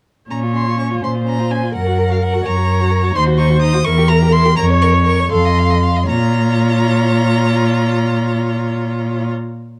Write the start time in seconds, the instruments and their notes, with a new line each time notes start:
0.30 cello A#2, violin C#4 A#5, viola C#5
0.43 violin F4
0.54 violin C#4 C6
0.67 violin F4
0.78 violin C#4 C#6
0.90 violin F4
1.01 cello A#2, violin C#4 C6, viola C5
1.15 violin F4
1.26 violin C#4 A#5
1.39 violin F4
1.51 violin C#4 G#5
1.63 violin F4
1.75 cello F#2, violin A#4 F#5, viola A#4
1.87 violin F#4
1.98 violin A#4
2.10 violin F#4 F5
2.22 violin A#4 F#5
2.34 violin F#4
2.45 cello F#2, violin A#4 A#5, viola C#5
2.56 violin F#4
2.68 violin A#4
2.80 violin F#4
2.91 violin A#4
3.02 violin F#4
3.14 cello D#2, violin D#4 C6, viola C5
3.26 violin F#4
3.38 violin D#4 C#6
3.49 violin F#4
3.61 violin D#4 D#6
3.73 violin F#4
3.85 cello E2, violin E4 C#6, viola A#4
3.98 violin G4
4.09 violin E4 A#5
4.22 violin G4
4.32 violin E4 C6
4.45 violin G4
4.57 cello F2, violin A#4 A#5, viola C#5
4.70 violin C#5
4.82 violin A#4 C#6
4.94 violin C#5
5.06 violin A#4 C#6
5.19 violin C#5
5.32 cello F2, viola A4, violin F5 C6
5.45 violin D#5
5.58 violin F5
5.70 violin D#5
5.83 violin F5
5.96 violin D#5
6.09 cello A#2, viola F4, violin C#5 A#5